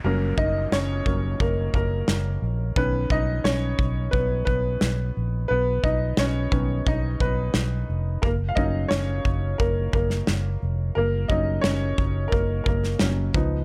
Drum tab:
SD |----o-------o---|----o-------o---|----o-------o---|----o------oo---|
BD |--o---o-o-o-----|o-o---o-o-o-----|--o---o-o-o-----|o-o---o-o-o-----|

SD |----o------oo---|
BD |--o---o-o-o---o-|